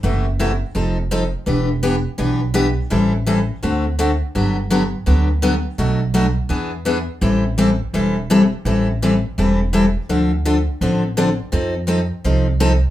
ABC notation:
X:1
M:4/4
L:1/16
Q:"Swing" 1/4=167
K:Ador
V:1 name="Steel-string acoustic guitar"
[C,E,A,EF]2 z2 [C,E,A,EF] z3 [=F,C_EA]2 z2 [F,CEA] z3 | [E,B,DG]2 z2 [E,B,DG] z3 [E,B,DG]2 z2 [E,B,DG] z3 | [E,G,CEA]2 z2 [E,G,CEA] z3 [D,A,CFA]2 z2 [D,A,CFA] z3 | [D,F,B,DG]2 z2 [D,F,B,DG] z3 [D,F,B,DG]2 z2 [D,F,B,DG] z3 |
[B,,F,A,DF]2 z2 [B,,F,A,DF] z3 [E,B,D^G]2 z2 [E,B,DG] z3 | [E,G,CEA]2 z2 [E,G,CEA] z3 [E,G,CEA]2 z2 [E,G,CEA] z3 | [E,G,CEA]2 z2 [E,G,CEA] z3 [E,G,CEA]2 z2 [E,G,CEA] z3 | [K:Dm] [D,F,CDA]2 z2 [D,F,CDA] z3 [D,F,CDA]2 z2 [D,F,CDA] z3 |
[F,C_EA]2 z2 [F,CEA] z3 [F,CEA]2 z2 [F,CEA] z3 |]
V:2 name="Upright bass" clef=bass
F,,,8 =F,,,8 | E,,,8 B,,,8 | A,,,8 D,,8 | G,,,8 D,,8 |
B,,,8 E,,8 | A,,,8 E,,,8 | A,,,8 E,,,8 | [K:Dm] D,,8 A,,,8 |
F,,8 C,,8 |]